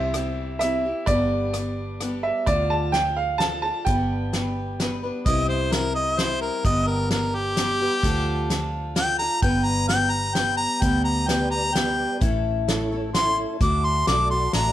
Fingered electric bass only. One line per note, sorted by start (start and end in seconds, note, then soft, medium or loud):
0.00 0.92 C2 medium
1.07 2.31 G1 medium
2.47 3.71 D2 medium
3.87 5.10 G1 medium
5.26 6.49 C2 medium
6.65 7.88 G1 medium
8.04 9.27 D2 medium
9.43 10.66 G1 loud
10.82 12.05 D2 medium
12.22 13.45 A1 loud
13.61 14.02 D2 loud
14.08 14.47 B1 medium
14.54 14.72 A1 medium